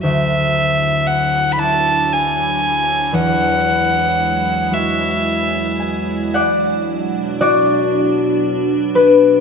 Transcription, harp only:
\new Staff \with { instrumentName = "Harp" } { \time 6/8 \key b \dorian \tempo 4. = 39 << { r2. | r2 r8 gis''8 | <d'' fis''>4 <fis' d''>4. b'8 | } \\ { d,4. <d' e' fis'>4. | e,4. <gis e' fis'>4. | r2. | } >> }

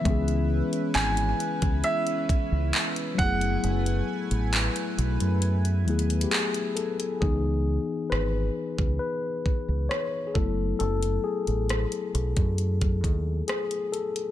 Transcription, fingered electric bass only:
\new Staff \with { instrumentName = "Fingered electric bass" } { \clef bass \time 4/4 \key cis \minor \tempo 4 = 67 cis,8. r16 gis,,8 r16 cis,16 r8. cis,16 r8 fis,,8 | fis,,8 r16 a,,8 r16 b,,16 fis,8. dis,8 r4 | cis,8. r16 gis,,8 r16 cis,16 r8. cis,16 r8 fis,,8 | fis,,8 r16 a,,8 r16 b,,16 fis,8. dis,8 r4 | }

